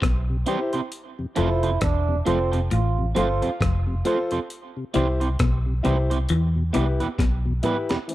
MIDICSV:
0, 0, Header, 1, 8, 480
1, 0, Start_track
1, 0, Tempo, 896325
1, 493, Time_signature, 4, 2, 24, 8
1, 4363, End_track
2, 0, Start_track
2, 0, Title_t, "Grand piano"
2, 0, Program_c, 0, 0
2, 249, Note_on_c, 0, 64, 94
2, 253, Note_on_c, 0, 67, 93
2, 256, Note_on_c, 0, 72, 101
2, 385, Note_off_c, 0, 64, 0
2, 387, Note_off_c, 0, 67, 0
2, 388, Note_off_c, 0, 72, 0
2, 732, Note_on_c, 0, 65, 96
2, 735, Note_on_c, 0, 69, 82
2, 738, Note_on_c, 0, 72, 110
2, 866, Note_off_c, 0, 65, 0
2, 867, Note_off_c, 0, 69, 0
2, 869, Note_off_c, 0, 72, 0
2, 1208, Note_on_c, 0, 65, 86
2, 1212, Note_on_c, 0, 69, 77
2, 1216, Note_on_c, 0, 72, 92
2, 1344, Note_off_c, 0, 65, 0
2, 1346, Note_off_c, 0, 69, 0
2, 1348, Note_off_c, 0, 72, 0
2, 1689, Note_on_c, 0, 65, 91
2, 1694, Note_on_c, 0, 69, 87
2, 1696, Note_on_c, 0, 72, 107
2, 1825, Note_off_c, 0, 65, 0
2, 1827, Note_off_c, 0, 69, 0
2, 1828, Note_off_c, 0, 72, 0
2, 2168, Note_on_c, 0, 65, 104
2, 2171, Note_on_c, 0, 69, 87
2, 2176, Note_on_c, 0, 72, 108
2, 2304, Note_off_c, 0, 65, 0
2, 2306, Note_off_c, 0, 69, 0
2, 2308, Note_off_c, 0, 72, 0
2, 2645, Note_on_c, 0, 64, 104
2, 2648, Note_on_c, 0, 67, 85
2, 2650, Note_on_c, 0, 72, 98
2, 2782, Note_off_c, 0, 64, 0
2, 2784, Note_off_c, 0, 67, 0
2, 2785, Note_off_c, 0, 72, 0
2, 3122, Note_on_c, 0, 64, 90
2, 3126, Note_on_c, 0, 67, 79
2, 3128, Note_on_c, 0, 72, 93
2, 3261, Note_off_c, 0, 64, 0
2, 3263, Note_off_c, 0, 67, 0
2, 3264, Note_off_c, 0, 72, 0
2, 3605, Note_on_c, 0, 64, 84
2, 3609, Note_on_c, 0, 67, 89
2, 3611, Note_on_c, 0, 71, 101
2, 3742, Note_off_c, 0, 64, 0
2, 3745, Note_off_c, 0, 67, 0
2, 3746, Note_off_c, 0, 71, 0
2, 4084, Note_on_c, 0, 64, 91
2, 4088, Note_on_c, 0, 67, 81
2, 4091, Note_on_c, 0, 71, 110
2, 4222, Note_off_c, 0, 64, 0
2, 4224, Note_off_c, 0, 67, 0
2, 4226, Note_off_c, 0, 71, 0
2, 4322, Note_on_c, 0, 52, 61
2, 4327, Note_on_c, 0, 57, 52
2, 4329, Note_on_c, 0, 60, 62
2, 4363, Note_off_c, 0, 52, 0
2, 4363, Note_off_c, 0, 57, 0
2, 4363, Note_off_c, 0, 60, 0
2, 4363, End_track
3, 0, Start_track
3, 0, Title_t, "Clean electric guitar"
3, 0, Program_c, 1, 27
3, 248, Note_on_c, 1, 60, 87
3, 251, Note_on_c, 1, 64, 84
3, 255, Note_on_c, 1, 67, 93
3, 256, Note_on_c, 1, 72, 112
3, 311, Note_off_c, 1, 60, 0
3, 313, Note_off_c, 1, 64, 0
3, 315, Note_off_c, 1, 67, 0
3, 315, Note_off_c, 1, 72, 0
3, 392, Note_on_c, 1, 72, 69
3, 396, Note_on_c, 1, 67, 57
3, 401, Note_on_c, 1, 64, 54
3, 402, Note_on_c, 1, 60, 51
3, 427, Note_off_c, 1, 72, 0
3, 428, Note_off_c, 1, 67, 0
3, 431, Note_off_c, 1, 60, 0
3, 431, Note_off_c, 1, 64, 0
3, 728, Note_on_c, 1, 60, 90
3, 730, Note_on_c, 1, 65, 86
3, 733, Note_on_c, 1, 69, 103
3, 735, Note_on_c, 1, 72, 106
3, 791, Note_off_c, 1, 60, 0
3, 792, Note_off_c, 1, 65, 0
3, 793, Note_off_c, 1, 69, 0
3, 795, Note_off_c, 1, 72, 0
3, 872, Note_on_c, 1, 72, 61
3, 876, Note_on_c, 1, 69, 53
3, 877, Note_on_c, 1, 65, 51
3, 881, Note_on_c, 1, 60, 49
3, 906, Note_off_c, 1, 72, 0
3, 908, Note_off_c, 1, 69, 0
3, 909, Note_off_c, 1, 65, 0
3, 911, Note_off_c, 1, 60, 0
3, 1207, Note_on_c, 1, 60, 80
3, 1213, Note_on_c, 1, 65, 88
3, 1215, Note_on_c, 1, 69, 81
3, 1217, Note_on_c, 1, 72, 88
3, 1271, Note_off_c, 1, 60, 0
3, 1274, Note_off_c, 1, 65, 0
3, 1275, Note_off_c, 1, 69, 0
3, 1276, Note_off_c, 1, 72, 0
3, 1347, Note_on_c, 1, 72, 64
3, 1351, Note_on_c, 1, 69, 57
3, 1353, Note_on_c, 1, 65, 53
3, 1357, Note_on_c, 1, 60, 46
3, 1384, Note_off_c, 1, 72, 0
3, 1386, Note_off_c, 1, 69, 0
3, 1387, Note_off_c, 1, 65, 0
3, 1389, Note_off_c, 1, 60, 0
3, 1686, Note_on_c, 1, 60, 83
3, 1688, Note_on_c, 1, 65, 84
3, 1692, Note_on_c, 1, 69, 89
3, 1696, Note_on_c, 1, 72, 100
3, 1750, Note_off_c, 1, 60, 0
3, 1751, Note_off_c, 1, 65, 0
3, 1753, Note_off_c, 1, 69, 0
3, 1755, Note_off_c, 1, 72, 0
3, 1832, Note_on_c, 1, 72, 74
3, 1835, Note_on_c, 1, 69, 66
3, 1839, Note_on_c, 1, 65, 63
3, 1841, Note_on_c, 1, 60, 62
3, 1866, Note_off_c, 1, 72, 0
3, 1868, Note_off_c, 1, 69, 0
3, 1870, Note_off_c, 1, 65, 0
3, 1871, Note_off_c, 1, 60, 0
3, 2169, Note_on_c, 1, 60, 81
3, 2173, Note_on_c, 1, 65, 87
3, 2176, Note_on_c, 1, 69, 88
3, 2178, Note_on_c, 1, 72, 79
3, 2232, Note_off_c, 1, 60, 0
3, 2234, Note_off_c, 1, 65, 0
3, 2235, Note_off_c, 1, 69, 0
3, 2236, Note_off_c, 1, 72, 0
3, 2312, Note_on_c, 1, 72, 74
3, 2316, Note_on_c, 1, 69, 65
3, 2318, Note_on_c, 1, 65, 58
3, 2322, Note_on_c, 1, 60, 52
3, 2347, Note_off_c, 1, 72, 0
3, 2348, Note_off_c, 1, 69, 0
3, 2349, Note_off_c, 1, 65, 0
3, 2351, Note_off_c, 1, 60, 0
3, 2645, Note_on_c, 1, 60, 89
3, 2651, Note_on_c, 1, 64, 91
3, 2652, Note_on_c, 1, 67, 104
3, 2654, Note_on_c, 1, 72, 100
3, 2710, Note_off_c, 1, 60, 0
3, 2712, Note_off_c, 1, 64, 0
3, 2713, Note_off_c, 1, 67, 0
3, 2714, Note_off_c, 1, 72, 0
3, 2786, Note_on_c, 1, 72, 59
3, 2790, Note_on_c, 1, 67, 63
3, 2793, Note_on_c, 1, 64, 63
3, 2795, Note_on_c, 1, 60, 47
3, 2823, Note_off_c, 1, 72, 0
3, 2825, Note_off_c, 1, 67, 0
3, 2827, Note_off_c, 1, 64, 0
3, 2828, Note_off_c, 1, 60, 0
3, 3127, Note_on_c, 1, 60, 73
3, 3132, Note_on_c, 1, 64, 90
3, 3134, Note_on_c, 1, 67, 80
3, 3137, Note_on_c, 1, 72, 93
3, 3190, Note_off_c, 1, 60, 0
3, 3193, Note_off_c, 1, 64, 0
3, 3194, Note_off_c, 1, 67, 0
3, 3195, Note_off_c, 1, 72, 0
3, 3268, Note_on_c, 1, 72, 64
3, 3272, Note_on_c, 1, 67, 66
3, 3273, Note_on_c, 1, 64, 54
3, 3278, Note_on_c, 1, 60, 55
3, 3304, Note_off_c, 1, 72, 0
3, 3306, Note_off_c, 1, 67, 0
3, 3307, Note_off_c, 1, 64, 0
3, 3309, Note_off_c, 1, 60, 0
3, 3604, Note_on_c, 1, 59, 83
3, 3609, Note_on_c, 1, 64, 81
3, 3612, Note_on_c, 1, 67, 93
3, 3614, Note_on_c, 1, 71, 90
3, 3669, Note_off_c, 1, 59, 0
3, 3672, Note_off_c, 1, 64, 0
3, 3673, Note_off_c, 1, 67, 0
3, 3674, Note_off_c, 1, 71, 0
3, 3750, Note_on_c, 1, 71, 71
3, 3754, Note_on_c, 1, 67, 67
3, 3758, Note_on_c, 1, 64, 63
3, 3759, Note_on_c, 1, 59, 61
3, 3785, Note_off_c, 1, 71, 0
3, 3787, Note_off_c, 1, 67, 0
3, 3789, Note_off_c, 1, 64, 0
3, 3790, Note_off_c, 1, 59, 0
3, 4089, Note_on_c, 1, 59, 82
3, 4093, Note_on_c, 1, 64, 75
3, 4097, Note_on_c, 1, 67, 74
3, 4100, Note_on_c, 1, 71, 96
3, 4151, Note_off_c, 1, 59, 0
3, 4154, Note_off_c, 1, 64, 0
3, 4155, Note_off_c, 1, 67, 0
3, 4157, Note_off_c, 1, 71, 0
3, 4229, Note_on_c, 1, 71, 61
3, 4232, Note_on_c, 1, 67, 65
3, 4236, Note_on_c, 1, 64, 53
3, 4239, Note_on_c, 1, 59, 52
3, 4265, Note_off_c, 1, 71, 0
3, 4266, Note_off_c, 1, 67, 0
3, 4268, Note_off_c, 1, 64, 0
3, 4269, Note_off_c, 1, 59, 0
3, 4363, End_track
4, 0, Start_track
4, 0, Title_t, "Trombone"
4, 0, Program_c, 2, 57
4, 731, Note_on_c, 2, 64, 89
4, 973, Note_on_c, 2, 62, 106
4, 982, Note_off_c, 2, 64, 0
4, 1165, Note_off_c, 2, 62, 0
4, 1218, Note_on_c, 2, 60, 106
4, 1408, Note_off_c, 2, 60, 0
4, 1459, Note_on_c, 2, 65, 80
4, 1649, Note_off_c, 2, 65, 0
4, 1698, Note_on_c, 2, 65, 90
4, 1888, Note_off_c, 2, 65, 0
4, 4363, End_track
5, 0, Start_track
5, 0, Title_t, "Tonewheel organ"
5, 0, Program_c, 3, 16
5, 158, Note_on_c, 3, 48, 56
5, 198, Note_off_c, 3, 48, 0
5, 253, Note_on_c, 3, 52, 79
5, 255, Note_on_c, 3, 55, 69
5, 256, Note_on_c, 3, 60, 87
5, 313, Note_off_c, 3, 52, 0
5, 313, Note_off_c, 3, 55, 0
5, 314, Note_off_c, 3, 60, 0
5, 396, Note_on_c, 3, 48, 57
5, 437, Note_off_c, 3, 48, 0
5, 637, Note_on_c, 3, 41, 53
5, 637, Note_on_c, 3, 48, 58
5, 677, Note_off_c, 3, 41, 0
5, 677, Note_off_c, 3, 48, 0
5, 733, Note_on_c, 3, 53, 74
5, 735, Note_on_c, 3, 57, 65
5, 736, Note_on_c, 3, 60, 91
5, 792, Note_off_c, 3, 53, 0
5, 793, Note_off_c, 3, 57, 0
5, 794, Note_off_c, 3, 60, 0
5, 875, Note_on_c, 3, 41, 56
5, 875, Note_on_c, 3, 48, 57
5, 916, Note_off_c, 3, 41, 0
5, 916, Note_off_c, 3, 48, 0
5, 1116, Note_on_c, 3, 41, 62
5, 1117, Note_on_c, 3, 48, 60
5, 1157, Note_off_c, 3, 41, 0
5, 1157, Note_off_c, 3, 48, 0
5, 1215, Note_on_c, 3, 53, 71
5, 1215, Note_on_c, 3, 57, 68
5, 1217, Note_on_c, 3, 60, 77
5, 1273, Note_off_c, 3, 53, 0
5, 1273, Note_off_c, 3, 57, 0
5, 1274, Note_off_c, 3, 60, 0
5, 1356, Note_on_c, 3, 41, 57
5, 1356, Note_on_c, 3, 48, 61
5, 1397, Note_off_c, 3, 41, 0
5, 1397, Note_off_c, 3, 48, 0
5, 1595, Note_on_c, 3, 48, 59
5, 1596, Note_on_c, 3, 41, 59
5, 1636, Note_off_c, 3, 48, 0
5, 1637, Note_off_c, 3, 41, 0
5, 1689, Note_on_c, 3, 53, 76
5, 1692, Note_on_c, 3, 57, 67
5, 1694, Note_on_c, 3, 60, 78
5, 1750, Note_off_c, 3, 53, 0
5, 1752, Note_off_c, 3, 57, 0
5, 1753, Note_off_c, 3, 60, 0
5, 1831, Note_on_c, 3, 41, 60
5, 1831, Note_on_c, 3, 48, 60
5, 1874, Note_off_c, 3, 41, 0
5, 1874, Note_off_c, 3, 48, 0
5, 2071, Note_on_c, 3, 48, 66
5, 2072, Note_on_c, 3, 41, 67
5, 2114, Note_off_c, 3, 48, 0
5, 2115, Note_off_c, 3, 41, 0
5, 2169, Note_on_c, 3, 53, 80
5, 2171, Note_on_c, 3, 57, 75
5, 2172, Note_on_c, 3, 60, 82
5, 2230, Note_off_c, 3, 53, 0
5, 2231, Note_off_c, 3, 57, 0
5, 2232, Note_off_c, 3, 60, 0
5, 2311, Note_on_c, 3, 41, 52
5, 2313, Note_on_c, 3, 48, 52
5, 2354, Note_off_c, 3, 41, 0
5, 2355, Note_off_c, 3, 48, 0
5, 2552, Note_on_c, 3, 48, 65
5, 2595, Note_off_c, 3, 48, 0
5, 2650, Note_on_c, 3, 52, 77
5, 2650, Note_on_c, 3, 55, 69
5, 2653, Note_on_c, 3, 60, 81
5, 2711, Note_off_c, 3, 52, 0
5, 2711, Note_off_c, 3, 55, 0
5, 2712, Note_off_c, 3, 60, 0
5, 2792, Note_on_c, 3, 48, 57
5, 2835, Note_off_c, 3, 48, 0
5, 3031, Note_on_c, 3, 48, 60
5, 3074, Note_off_c, 3, 48, 0
5, 3126, Note_on_c, 3, 52, 73
5, 3128, Note_on_c, 3, 55, 67
5, 3130, Note_on_c, 3, 60, 81
5, 3189, Note_off_c, 3, 52, 0
5, 3190, Note_off_c, 3, 55, 0
5, 3191, Note_off_c, 3, 60, 0
5, 3268, Note_on_c, 3, 48, 55
5, 3313, Note_off_c, 3, 48, 0
5, 3509, Note_on_c, 3, 40, 61
5, 3509, Note_on_c, 3, 47, 61
5, 3553, Note_off_c, 3, 40, 0
5, 3553, Note_off_c, 3, 47, 0
5, 3606, Note_on_c, 3, 52, 73
5, 3608, Note_on_c, 3, 55, 67
5, 3609, Note_on_c, 3, 59, 80
5, 3668, Note_off_c, 3, 52, 0
5, 3669, Note_off_c, 3, 55, 0
5, 3670, Note_off_c, 3, 59, 0
5, 3748, Note_on_c, 3, 40, 59
5, 3751, Note_on_c, 3, 47, 62
5, 3793, Note_off_c, 3, 40, 0
5, 3794, Note_off_c, 3, 47, 0
5, 3992, Note_on_c, 3, 40, 57
5, 3992, Note_on_c, 3, 47, 58
5, 4034, Note_off_c, 3, 40, 0
5, 4035, Note_off_c, 3, 47, 0
5, 4091, Note_on_c, 3, 52, 81
5, 4092, Note_on_c, 3, 55, 64
5, 4093, Note_on_c, 3, 59, 84
5, 4151, Note_off_c, 3, 52, 0
5, 4152, Note_off_c, 3, 55, 0
5, 4152, Note_off_c, 3, 59, 0
5, 4231, Note_on_c, 3, 40, 55
5, 4231, Note_on_c, 3, 47, 57
5, 4274, Note_off_c, 3, 40, 0
5, 4274, Note_off_c, 3, 47, 0
5, 4363, End_track
6, 0, Start_track
6, 0, Title_t, "Clean electric guitar"
6, 0, Program_c, 4, 27
6, 10, Note_on_c, 4, 47, 73
6, 155, Note_off_c, 4, 47, 0
6, 733, Note_on_c, 4, 41, 87
6, 877, Note_off_c, 4, 41, 0
6, 974, Note_on_c, 4, 40, 76
6, 1118, Note_off_c, 4, 40, 0
6, 1214, Note_on_c, 4, 41, 74
6, 1358, Note_off_c, 4, 41, 0
6, 1454, Note_on_c, 4, 45, 88
6, 1597, Note_off_c, 4, 45, 0
6, 1694, Note_on_c, 4, 43, 75
6, 1778, Note_off_c, 4, 43, 0
6, 1934, Note_on_c, 4, 41, 90
6, 2078, Note_off_c, 4, 41, 0
6, 2654, Note_on_c, 4, 48, 83
6, 2798, Note_off_c, 4, 48, 0
6, 2894, Note_on_c, 4, 47, 86
6, 3037, Note_off_c, 4, 47, 0
6, 3133, Note_on_c, 4, 48, 77
6, 3277, Note_off_c, 4, 48, 0
6, 3374, Note_on_c, 4, 52, 86
6, 3518, Note_off_c, 4, 52, 0
6, 3611, Note_on_c, 4, 48, 72
6, 3696, Note_off_c, 4, 48, 0
6, 3854, Note_on_c, 4, 47, 84
6, 3998, Note_off_c, 4, 47, 0
6, 4363, End_track
7, 0, Start_track
7, 0, Title_t, "Fingered electric bass"
7, 0, Program_c, 5, 33
7, 17, Note_on_c, 5, 35, 90
7, 231, Note_off_c, 5, 35, 0
7, 741, Note_on_c, 5, 29, 98
7, 953, Note_off_c, 5, 29, 0
7, 975, Note_on_c, 5, 28, 94
7, 1190, Note_off_c, 5, 28, 0
7, 1217, Note_on_c, 5, 29, 90
7, 1431, Note_off_c, 5, 29, 0
7, 1460, Note_on_c, 5, 33, 99
7, 1672, Note_off_c, 5, 33, 0
7, 1698, Note_on_c, 5, 31, 87
7, 1822, Note_off_c, 5, 31, 0
7, 1934, Note_on_c, 5, 29, 96
7, 2149, Note_off_c, 5, 29, 0
7, 2656, Note_on_c, 5, 36, 103
7, 2870, Note_off_c, 5, 36, 0
7, 2895, Note_on_c, 5, 35, 97
7, 3109, Note_off_c, 5, 35, 0
7, 3138, Note_on_c, 5, 36, 94
7, 3351, Note_off_c, 5, 36, 0
7, 3375, Note_on_c, 5, 40, 109
7, 3590, Note_off_c, 5, 40, 0
7, 3619, Note_on_c, 5, 36, 88
7, 3742, Note_off_c, 5, 36, 0
7, 3853, Note_on_c, 5, 35, 88
7, 4068, Note_off_c, 5, 35, 0
7, 4363, End_track
8, 0, Start_track
8, 0, Title_t, "Drums"
8, 13, Note_on_c, 9, 36, 103
8, 18, Note_on_c, 9, 37, 101
8, 19, Note_on_c, 9, 42, 80
8, 66, Note_off_c, 9, 36, 0
8, 71, Note_off_c, 9, 37, 0
8, 73, Note_off_c, 9, 42, 0
8, 249, Note_on_c, 9, 42, 85
8, 302, Note_off_c, 9, 42, 0
8, 390, Note_on_c, 9, 42, 55
8, 444, Note_off_c, 9, 42, 0
8, 492, Note_on_c, 9, 42, 98
8, 545, Note_off_c, 9, 42, 0
8, 729, Note_on_c, 9, 42, 77
8, 783, Note_off_c, 9, 42, 0
8, 873, Note_on_c, 9, 42, 57
8, 927, Note_off_c, 9, 42, 0
8, 970, Note_on_c, 9, 42, 112
8, 973, Note_on_c, 9, 36, 121
8, 973, Note_on_c, 9, 37, 119
8, 1023, Note_off_c, 9, 42, 0
8, 1027, Note_off_c, 9, 36, 0
8, 1027, Note_off_c, 9, 37, 0
8, 1213, Note_on_c, 9, 42, 72
8, 1266, Note_off_c, 9, 42, 0
8, 1355, Note_on_c, 9, 42, 61
8, 1409, Note_off_c, 9, 42, 0
8, 1452, Note_on_c, 9, 42, 87
8, 1506, Note_off_c, 9, 42, 0
8, 1694, Note_on_c, 9, 42, 89
8, 1747, Note_off_c, 9, 42, 0
8, 1833, Note_on_c, 9, 42, 52
8, 1887, Note_off_c, 9, 42, 0
8, 1931, Note_on_c, 9, 36, 107
8, 1939, Note_on_c, 9, 37, 114
8, 1940, Note_on_c, 9, 42, 83
8, 1985, Note_off_c, 9, 36, 0
8, 1992, Note_off_c, 9, 37, 0
8, 1994, Note_off_c, 9, 42, 0
8, 2169, Note_on_c, 9, 42, 85
8, 2223, Note_off_c, 9, 42, 0
8, 2306, Note_on_c, 9, 42, 54
8, 2360, Note_off_c, 9, 42, 0
8, 2411, Note_on_c, 9, 42, 94
8, 2464, Note_off_c, 9, 42, 0
8, 2645, Note_on_c, 9, 42, 81
8, 2699, Note_off_c, 9, 42, 0
8, 2791, Note_on_c, 9, 42, 56
8, 2844, Note_off_c, 9, 42, 0
8, 2888, Note_on_c, 9, 42, 104
8, 2891, Note_on_c, 9, 36, 120
8, 2892, Note_on_c, 9, 37, 119
8, 2942, Note_off_c, 9, 42, 0
8, 2944, Note_off_c, 9, 36, 0
8, 2945, Note_off_c, 9, 37, 0
8, 3131, Note_on_c, 9, 42, 75
8, 3184, Note_off_c, 9, 42, 0
8, 3273, Note_on_c, 9, 42, 66
8, 3326, Note_off_c, 9, 42, 0
8, 3367, Note_on_c, 9, 42, 93
8, 3420, Note_off_c, 9, 42, 0
8, 3609, Note_on_c, 9, 42, 85
8, 3663, Note_off_c, 9, 42, 0
8, 3750, Note_on_c, 9, 42, 51
8, 3804, Note_off_c, 9, 42, 0
8, 3849, Note_on_c, 9, 36, 97
8, 3852, Note_on_c, 9, 38, 61
8, 3856, Note_on_c, 9, 42, 90
8, 3902, Note_off_c, 9, 36, 0
8, 3905, Note_off_c, 9, 38, 0
8, 3910, Note_off_c, 9, 42, 0
8, 4086, Note_on_c, 9, 42, 78
8, 4090, Note_on_c, 9, 45, 95
8, 4140, Note_off_c, 9, 42, 0
8, 4143, Note_off_c, 9, 45, 0
8, 4227, Note_on_c, 9, 42, 60
8, 4234, Note_on_c, 9, 38, 102
8, 4280, Note_off_c, 9, 42, 0
8, 4287, Note_off_c, 9, 38, 0
8, 4332, Note_on_c, 9, 42, 92
8, 4363, Note_off_c, 9, 42, 0
8, 4363, End_track
0, 0, End_of_file